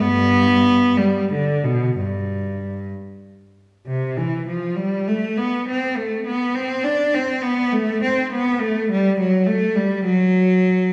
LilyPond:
\new Staff \with { instrumentName = "Cello" } { \time 12/8 \key g \mixolydian \tempo 4. = 67 <g, b>4. g8 d8 b,8 g,4. r4. | c8 e8 f8 g8 a8 b8 c'8 a8 b8 c'8 d'8 c'8 | b8 a8 c'8 b8 a8 g8 fis8 a8 g8 fis4. | }